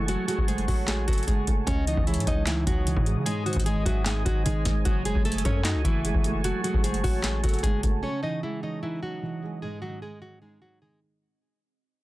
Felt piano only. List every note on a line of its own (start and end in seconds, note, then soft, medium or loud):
0.00 0.08 F#3 medium
0.00 0.29 G#3 medium
0.00 0.48 A3 medium
0.00 0.28 F#4 medium
0.08 1.08 F#3 medium
0.29 1.26 G#3 medium
0.48 1.46 A3 medium
0.88 1.67 F#4 medium
1.27 1.67 G#3 medium
1.48 1.68 A3 medium
1.67 2.67 C#3 medium
1.87 2.85 E3 medium
2.07 3.05 G#3 medium
2.47 3.26 D#4 medium
2.87 3.26 E3 loud
3.06 3.26 G#3 medium
3.26 4.26 G#2 medium
3.46 4.44 D#3 medium
3.66 4.64 G#3 medium
4.06 4.86 D#4 medium
4.46 4.85 D#3 loud
4.66 4.85 G#3 medium
4.85 5.85 F#3 medium
5.05 6.03 G#3 medium
5.25 6.24 A3 medium
5.64 6.64 F#4 medium
6.05 6.63 G#3 medium
6.25 6.82 A3 medium
6.44 7.44 F#3 medium
6.64 7.62 G#3 medium
6.84 7.82 A3 medium
7.24 8.03 F#4 medium
7.63 8.03 G#3 medium
7.84 8.03 A3 medium
8.03 9.03 C#3 medium
8.23 9.21 E3 medium
8.43 9.41 G#3 medium
8.83 9.62 D#4 medium
9.22 9.62 E3 medium
9.42 9.62 G#3 medium
9.62 10.62 G#2 medium
9.82 10.80 D#3 medium
10.02 11.00 G#3 medium
10.42 11.21 D#4 medium
10.82 11.21 D#3 medium
11.01 11.21 G#3 medium